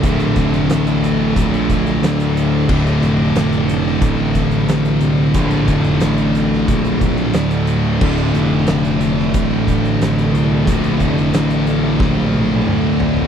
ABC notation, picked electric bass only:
X:1
M:4/4
L:1/8
Q:1/4=90
K:Cmix
V:1 name="Picked electric bass" clef=bass
B,,, F,,, A,,,2 B,,,2 D,,2 | D,,, F,,, F,,,2 A,,,2 A,,, C,, | B,,, F,,, A,,,2 B,,,2 D,,2 | D,,, F,,, F,,,2 A,,,2 A,,, C,, |
B,,, F,,, A,,,2 B,,,2 D,,2 |]